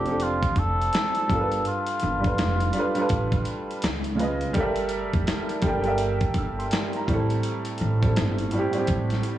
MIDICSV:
0, 0, Header, 1, 5, 480
1, 0, Start_track
1, 0, Tempo, 722892
1, 1102, Time_signature, 4, 2, 24, 8
1, 6230, End_track
2, 0, Start_track
2, 0, Title_t, "Muted trumpet"
2, 0, Program_c, 0, 59
2, 0, Note_on_c, 0, 67, 97
2, 150, Note_on_c, 0, 65, 93
2, 160, Note_off_c, 0, 67, 0
2, 390, Note_on_c, 0, 69, 100
2, 400, Note_off_c, 0, 65, 0
2, 1106, Note_off_c, 0, 69, 0
2, 1110, Note_on_c, 0, 65, 87
2, 2519, Note_off_c, 0, 65, 0
2, 6230, End_track
3, 0, Start_track
3, 0, Title_t, "Upright piano"
3, 0, Program_c, 1, 0
3, 0, Control_c, 1, 64, 127
3, 0, Note_on_c, 1, 53, 70
3, 0, Note_on_c, 1, 60, 61
3, 0, Note_on_c, 1, 62, 65
3, 0, Note_on_c, 1, 67, 64
3, 0, Note_on_c, 1, 69, 76
3, 27, Note_off_c, 1, 53, 0
3, 27, Note_on_c, 1, 53, 69
3, 39, Note_off_c, 1, 60, 0
3, 39, Note_on_c, 1, 60, 70
3, 51, Note_off_c, 1, 62, 0
3, 51, Note_on_c, 1, 62, 68
3, 61, Note_off_c, 1, 67, 0
3, 61, Note_on_c, 1, 67, 66
3, 72, Note_off_c, 1, 69, 0
3, 72, Note_on_c, 1, 69, 78
3, 693, Note_off_c, 1, 53, 0
3, 699, Note_off_c, 1, 60, 0
3, 705, Note_off_c, 1, 62, 0
3, 710, Note_off_c, 1, 67, 0
3, 716, Note_off_c, 1, 69, 0
3, 847, Note_on_c, 1, 55, 72
3, 858, Note_on_c, 1, 62, 60
3, 869, Note_on_c, 1, 65, 65
3, 871, Control_c, 1, 64, 0
3, 881, Note_on_c, 1, 69, 69
3, 892, Note_on_c, 1, 70, 64
3, 930, Note_off_c, 1, 70, 0
3, 935, Note_on_c, 1, 71, 75
3, 993, Control_c, 1, 64, 127
3, 1335, Note_off_c, 1, 55, 0
3, 1340, Note_off_c, 1, 62, 0
3, 1345, Note_off_c, 1, 65, 0
3, 1351, Note_off_c, 1, 69, 0
3, 1379, Note_off_c, 1, 71, 0
3, 1460, Note_on_c, 1, 55, 67
3, 1472, Note_on_c, 1, 62, 56
3, 1484, Note_on_c, 1, 65, 50
3, 1495, Note_on_c, 1, 69, 52
3, 1507, Note_on_c, 1, 71, 74
3, 1722, Note_off_c, 1, 55, 0
3, 1728, Note_off_c, 1, 62, 0
3, 1734, Note_off_c, 1, 65, 0
3, 1740, Note_off_c, 1, 69, 0
3, 1745, Note_off_c, 1, 71, 0
3, 1809, Note_on_c, 1, 55, 79
3, 1822, Note_on_c, 1, 62, 76
3, 1833, Note_on_c, 1, 65, 76
3, 1845, Note_on_c, 1, 69, 70
3, 1856, Note_on_c, 1, 71, 93
3, 1917, Note_off_c, 1, 55, 0
3, 1923, Note_off_c, 1, 62, 0
3, 1929, Note_off_c, 1, 65, 0
3, 1935, Note_off_c, 1, 69, 0
3, 1940, Note_off_c, 1, 71, 0
3, 1954, Note_on_c, 1, 55, 86
3, 1965, Note_on_c, 1, 62, 76
3, 1977, Note_on_c, 1, 65, 77
3, 1989, Note_on_c, 1, 69, 74
3, 1999, Note_on_c, 1, 71, 91
3, 2522, Note_off_c, 1, 55, 0
3, 2528, Note_off_c, 1, 62, 0
3, 2534, Note_off_c, 1, 65, 0
3, 2540, Note_off_c, 1, 69, 0
3, 2545, Note_off_c, 1, 71, 0
3, 2549, Control_c, 1, 64, 0
3, 2660, Control_c, 1, 64, 127
3, 2756, Note_on_c, 1, 49, 76
3, 2766, Note_on_c, 1, 56, 67
3, 2778, Note_on_c, 1, 65, 68
3, 2789, Note_on_c, 1, 71, 73
3, 2800, Note_on_c, 1, 75, 84
3, 2951, Note_off_c, 1, 49, 0
3, 2957, Note_off_c, 1, 56, 0
3, 2963, Note_off_c, 1, 65, 0
3, 2968, Note_off_c, 1, 71, 0
3, 2974, Note_off_c, 1, 75, 0
3, 3010, Note_on_c, 1, 55, 100
3, 3018, Note_on_c, 1, 67, 102
3, 3027, Note_on_c, 1, 69, 105
3, 3029, Control_c, 1, 64, 0
3, 3037, Note_on_c, 1, 70, 94
3, 3046, Note_on_c, 1, 74, 109
3, 3056, Note_on_c, 1, 76, 115
3, 3162, Control_c, 1, 64, 127
3, 3521, Note_off_c, 1, 55, 0
3, 3525, Note_off_c, 1, 67, 0
3, 3529, Note_off_c, 1, 69, 0
3, 3534, Note_off_c, 1, 70, 0
3, 3539, Note_off_c, 1, 74, 0
3, 3544, Note_off_c, 1, 76, 0
3, 3729, Note_on_c, 1, 55, 87
3, 3737, Note_on_c, 1, 67, 85
3, 3748, Note_on_c, 1, 69, 76
3, 3757, Note_on_c, 1, 70, 83
3, 3766, Note_on_c, 1, 74, 82
3, 3774, Note_on_c, 1, 79, 100
3, 3837, Note_off_c, 1, 55, 0
3, 3841, Note_off_c, 1, 67, 0
3, 3846, Note_off_c, 1, 69, 0
3, 3851, Note_off_c, 1, 70, 0
3, 3855, Note_off_c, 1, 74, 0
3, 3857, Note_on_c, 1, 55, 84
3, 3859, Note_off_c, 1, 79, 0
3, 3865, Note_on_c, 1, 67, 84
3, 3874, Note_on_c, 1, 69, 82
3, 3884, Note_on_c, 1, 70, 80
3, 3893, Note_on_c, 1, 74, 76
3, 3902, Note_on_c, 1, 76, 84
3, 4237, Note_on_c, 1, 88, 65
3, 4368, Note_off_c, 1, 88, 0
3, 4376, Note_on_c, 1, 84, 62
3, 4528, Note_off_c, 1, 55, 0
3, 4533, Note_off_c, 1, 67, 0
3, 4537, Note_off_c, 1, 69, 0
3, 4542, Note_off_c, 1, 70, 0
3, 4546, Note_off_c, 1, 74, 0
3, 4551, Note_off_c, 1, 76, 0
3, 4600, Note_off_c, 1, 84, 0
3, 4624, Note_on_c, 1, 82, 62
3, 4692, Note_on_c, 1, 45, 86
3, 4703, Note_on_c, 1, 55, 85
3, 4710, Control_c, 1, 64, 0
3, 4713, Note_on_c, 1, 60, 74
3, 4726, Note_on_c, 1, 64, 83
3, 4737, Note_on_c, 1, 69, 96
3, 4829, Control_c, 1, 64, 127
3, 4845, Note_off_c, 1, 82, 0
3, 5177, Note_off_c, 1, 45, 0
3, 5183, Note_off_c, 1, 55, 0
3, 5188, Note_off_c, 1, 60, 0
3, 5194, Note_off_c, 1, 64, 0
3, 5199, Note_off_c, 1, 69, 0
3, 5313, Note_on_c, 1, 45, 71
3, 5325, Note_on_c, 1, 55, 67
3, 5335, Note_on_c, 1, 60, 70
3, 5347, Note_on_c, 1, 64, 65
3, 5359, Note_on_c, 1, 69, 78
3, 5568, Note_off_c, 1, 45, 0
3, 5574, Note_off_c, 1, 55, 0
3, 5579, Note_off_c, 1, 60, 0
3, 5585, Note_off_c, 1, 64, 0
3, 5591, Note_off_c, 1, 69, 0
3, 5655, Note_on_c, 1, 45, 83
3, 5666, Note_on_c, 1, 55, 75
3, 5679, Note_on_c, 1, 60, 77
3, 5690, Note_on_c, 1, 64, 75
3, 5701, Note_on_c, 1, 67, 94
3, 5760, Note_off_c, 1, 45, 0
3, 5766, Note_off_c, 1, 55, 0
3, 5772, Note_off_c, 1, 60, 0
3, 5777, Note_off_c, 1, 64, 0
3, 5783, Note_off_c, 1, 67, 0
3, 5787, Note_on_c, 1, 45, 82
3, 5798, Note_on_c, 1, 55, 70
3, 5810, Note_on_c, 1, 60, 86
3, 5821, Note_on_c, 1, 64, 74
3, 5832, Note_on_c, 1, 67, 94
3, 6230, Note_off_c, 1, 45, 0
3, 6230, Note_off_c, 1, 55, 0
3, 6230, Note_off_c, 1, 60, 0
3, 6230, Note_off_c, 1, 64, 0
3, 6230, Note_off_c, 1, 67, 0
3, 6230, End_track
4, 0, Start_track
4, 0, Title_t, "Upright bass"
4, 0, Program_c, 2, 32
4, 0, Note_on_c, 2, 29, 78
4, 304, Note_off_c, 2, 29, 0
4, 375, Note_on_c, 2, 29, 85
4, 580, Note_off_c, 2, 29, 0
4, 863, Note_on_c, 2, 31, 91
4, 1065, Note_off_c, 2, 31, 0
4, 1346, Note_on_c, 2, 31, 95
4, 1547, Note_off_c, 2, 31, 0
4, 1588, Note_on_c, 2, 29, 99
4, 1788, Note_off_c, 2, 29, 0
4, 2061, Note_on_c, 2, 33, 93
4, 2264, Note_off_c, 2, 33, 0
4, 2547, Note_on_c, 2, 37, 98
4, 3025, Note_off_c, 2, 37, 0
4, 3025, Note_on_c, 2, 31, 90
4, 3349, Note_off_c, 2, 31, 0
4, 3414, Note_on_c, 2, 29, 78
4, 3490, Note_off_c, 2, 29, 0
4, 3738, Note_on_c, 2, 31, 83
4, 4144, Note_off_c, 2, 31, 0
4, 4216, Note_on_c, 2, 31, 91
4, 4421, Note_off_c, 2, 31, 0
4, 4704, Note_on_c, 2, 33, 86
4, 4905, Note_off_c, 2, 33, 0
4, 5187, Note_on_c, 2, 33, 95
4, 5387, Note_off_c, 2, 33, 0
4, 5426, Note_on_c, 2, 31, 92
4, 5627, Note_off_c, 2, 31, 0
4, 5902, Note_on_c, 2, 33, 81
4, 6104, Note_off_c, 2, 33, 0
4, 6230, End_track
5, 0, Start_track
5, 0, Title_t, "Drums"
5, 37, Note_on_c, 9, 42, 46
5, 104, Note_off_c, 9, 42, 0
5, 131, Note_on_c, 9, 42, 63
5, 198, Note_off_c, 9, 42, 0
5, 282, Note_on_c, 9, 42, 44
5, 283, Note_on_c, 9, 36, 89
5, 349, Note_off_c, 9, 36, 0
5, 349, Note_off_c, 9, 42, 0
5, 371, Note_on_c, 9, 36, 80
5, 371, Note_on_c, 9, 42, 65
5, 437, Note_off_c, 9, 42, 0
5, 438, Note_off_c, 9, 36, 0
5, 541, Note_on_c, 9, 42, 43
5, 608, Note_off_c, 9, 42, 0
5, 616, Note_on_c, 9, 42, 80
5, 630, Note_on_c, 9, 38, 106
5, 631, Note_on_c, 9, 39, 86
5, 682, Note_off_c, 9, 42, 0
5, 696, Note_off_c, 9, 38, 0
5, 698, Note_off_c, 9, 39, 0
5, 762, Note_on_c, 9, 42, 47
5, 828, Note_off_c, 9, 42, 0
5, 860, Note_on_c, 9, 36, 90
5, 865, Note_on_c, 9, 42, 52
5, 927, Note_off_c, 9, 36, 0
5, 931, Note_off_c, 9, 42, 0
5, 1006, Note_on_c, 9, 42, 44
5, 1073, Note_off_c, 9, 42, 0
5, 1096, Note_on_c, 9, 42, 68
5, 1162, Note_off_c, 9, 42, 0
5, 1239, Note_on_c, 9, 42, 53
5, 1305, Note_off_c, 9, 42, 0
5, 1325, Note_on_c, 9, 42, 64
5, 1392, Note_off_c, 9, 42, 0
5, 1489, Note_on_c, 9, 42, 42
5, 1490, Note_on_c, 9, 36, 89
5, 1556, Note_off_c, 9, 36, 0
5, 1556, Note_off_c, 9, 42, 0
5, 1582, Note_on_c, 9, 42, 77
5, 1587, Note_on_c, 9, 38, 99
5, 1588, Note_on_c, 9, 39, 78
5, 1648, Note_off_c, 9, 42, 0
5, 1653, Note_off_c, 9, 38, 0
5, 1655, Note_off_c, 9, 39, 0
5, 1729, Note_on_c, 9, 42, 49
5, 1795, Note_off_c, 9, 42, 0
5, 1813, Note_on_c, 9, 42, 75
5, 1879, Note_off_c, 9, 42, 0
5, 1959, Note_on_c, 9, 42, 46
5, 2026, Note_off_c, 9, 42, 0
5, 2053, Note_on_c, 9, 42, 66
5, 2059, Note_on_c, 9, 36, 91
5, 2119, Note_off_c, 9, 42, 0
5, 2125, Note_off_c, 9, 36, 0
5, 2204, Note_on_c, 9, 36, 85
5, 2204, Note_on_c, 9, 42, 41
5, 2271, Note_off_c, 9, 36, 0
5, 2271, Note_off_c, 9, 42, 0
5, 2292, Note_on_c, 9, 42, 69
5, 2358, Note_off_c, 9, 42, 0
5, 2461, Note_on_c, 9, 42, 46
5, 2528, Note_off_c, 9, 42, 0
5, 2536, Note_on_c, 9, 42, 78
5, 2550, Note_on_c, 9, 38, 106
5, 2552, Note_on_c, 9, 39, 85
5, 2603, Note_off_c, 9, 42, 0
5, 2617, Note_off_c, 9, 38, 0
5, 2619, Note_off_c, 9, 39, 0
5, 2684, Note_on_c, 9, 42, 45
5, 2750, Note_off_c, 9, 42, 0
5, 2785, Note_on_c, 9, 42, 59
5, 2851, Note_off_c, 9, 42, 0
5, 2927, Note_on_c, 9, 42, 41
5, 2994, Note_off_c, 9, 42, 0
5, 3016, Note_on_c, 9, 42, 72
5, 3022, Note_on_c, 9, 36, 97
5, 3082, Note_off_c, 9, 42, 0
5, 3088, Note_off_c, 9, 36, 0
5, 3159, Note_on_c, 9, 42, 51
5, 3225, Note_off_c, 9, 42, 0
5, 3245, Note_on_c, 9, 42, 64
5, 3312, Note_off_c, 9, 42, 0
5, 3409, Note_on_c, 9, 42, 44
5, 3410, Note_on_c, 9, 36, 86
5, 3476, Note_off_c, 9, 36, 0
5, 3476, Note_off_c, 9, 42, 0
5, 3500, Note_on_c, 9, 42, 71
5, 3505, Note_on_c, 9, 38, 95
5, 3507, Note_on_c, 9, 39, 77
5, 3567, Note_off_c, 9, 42, 0
5, 3572, Note_off_c, 9, 38, 0
5, 3573, Note_off_c, 9, 39, 0
5, 3647, Note_on_c, 9, 42, 47
5, 3713, Note_off_c, 9, 42, 0
5, 3730, Note_on_c, 9, 42, 65
5, 3735, Note_on_c, 9, 36, 91
5, 3796, Note_off_c, 9, 42, 0
5, 3801, Note_off_c, 9, 36, 0
5, 3876, Note_on_c, 9, 42, 44
5, 3942, Note_off_c, 9, 42, 0
5, 3970, Note_on_c, 9, 42, 71
5, 4036, Note_off_c, 9, 42, 0
5, 4121, Note_on_c, 9, 42, 41
5, 4124, Note_on_c, 9, 36, 86
5, 4188, Note_off_c, 9, 42, 0
5, 4190, Note_off_c, 9, 36, 0
5, 4210, Note_on_c, 9, 42, 69
5, 4212, Note_on_c, 9, 36, 92
5, 4277, Note_off_c, 9, 42, 0
5, 4278, Note_off_c, 9, 36, 0
5, 4381, Note_on_c, 9, 42, 44
5, 4447, Note_off_c, 9, 42, 0
5, 4455, Note_on_c, 9, 42, 77
5, 4470, Note_on_c, 9, 38, 116
5, 4471, Note_on_c, 9, 39, 90
5, 4522, Note_off_c, 9, 42, 0
5, 4536, Note_off_c, 9, 38, 0
5, 4538, Note_off_c, 9, 39, 0
5, 4602, Note_on_c, 9, 42, 44
5, 4669, Note_off_c, 9, 42, 0
5, 4701, Note_on_c, 9, 36, 99
5, 4705, Note_on_c, 9, 42, 55
5, 4768, Note_off_c, 9, 36, 0
5, 4772, Note_off_c, 9, 42, 0
5, 4847, Note_on_c, 9, 42, 46
5, 4914, Note_off_c, 9, 42, 0
5, 4936, Note_on_c, 9, 42, 70
5, 5002, Note_off_c, 9, 42, 0
5, 5078, Note_on_c, 9, 42, 53
5, 5145, Note_off_c, 9, 42, 0
5, 5165, Note_on_c, 9, 42, 65
5, 5231, Note_off_c, 9, 42, 0
5, 5329, Note_on_c, 9, 42, 42
5, 5330, Note_on_c, 9, 36, 88
5, 5395, Note_off_c, 9, 42, 0
5, 5396, Note_off_c, 9, 36, 0
5, 5421, Note_on_c, 9, 42, 79
5, 5425, Note_on_c, 9, 38, 94
5, 5427, Note_on_c, 9, 39, 76
5, 5487, Note_off_c, 9, 42, 0
5, 5492, Note_off_c, 9, 38, 0
5, 5493, Note_off_c, 9, 39, 0
5, 5568, Note_on_c, 9, 42, 49
5, 5634, Note_off_c, 9, 42, 0
5, 5651, Note_on_c, 9, 42, 69
5, 5718, Note_off_c, 9, 42, 0
5, 5796, Note_on_c, 9, 42, 44
5, 5863, Note_off_c, 9, 42, 0
5, 5891, Note_on_c, 9, 42, 74
5, 5898, Note_on_c, 9, 36, 90
5, 5958, Note_off_c, 9, 42, 0
5, 5965, Note_off_c, 9, 36, 0
5, 6043, Note_on_c, 9, 42, 41
5, 6060, Note_on_c, 9, 38, 29
5, 6110, Note_off_c, 9, 42, 0
5, 6126, Note_off_c, 9, 38, 0
5, 6131, Note_on_c, 9, 42, 68
5, 6198, Note_off_c, 9, 42, 0
5, 6230, End_track
0, 0, End_of_file